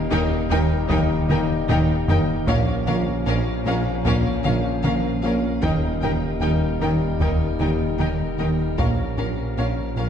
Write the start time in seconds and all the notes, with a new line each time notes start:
Already playing: D#1 G3 A#3 D#4 G4 A#4
0.10 D#2 D#3 G3 D#4 A#4 G5
0.50 D#2 D#3 G3 D#4 A#4 G5
0.89 D#2 D#3 D#4 A#4 G5, taiko
1.28 D#2 D#3 D#4 A#4 G5, taiko mid
1.68 D#2 D#3 D#4 A#4 G5, taiko low-mid
2.08 D#2 D#3 A#3 D#4 A#4 G5, taiko low
2.47 A#1 A#2 F3 A#3 C#4 F4 A#4 F5, taiko
2.87 A#1 A#2 C#4 A#4 F5, taiko mid
3.26 A#1 A#2 C#4 A#4 F5
3.66 A#1 A#2 C#4 A#4 F5
4.04 A#1 A#2 A#3 C#4 A#4 F5, taiko
4.44 A#1 A#2 C#4 A#4 F5, taiko mid
4.84 A#1 A#2 C#4 A#4 F5, taiko mid
5.23 A#1 A#2 A#3 C#4 F4 A#4 F5
5.62 D#1 D#2 D#3 G3 D#4 G4 A#4 G5, taiko
6.01 D#2 D#3 D#4 A#4 G5, taiko mid
6.40 D#2 D#3 G3 D#4 A#4 G5
6.79 D#2 D#3 G3 D#4 A#4 G5
7.20 D#2 D#3 D#4 A#4 G5, taiko
7.59 D#2 D#3 D#4 A#4 G5, taiko mid
7.99 D#2 D#3 D#4 A#4 G5, taiko mid
8.38 D#2 D#3 A#3 D#4 A#4 G5
8.78 A#1 A#2 F3 A#3 C#4 F4 A#4 F5, taiko
9.17 A#1 A#2 C#4 A#4 F5
9.57 A#1 A#2 C#4 A#4 F5
9.96 A#1 A#2 C#4 A#4 F5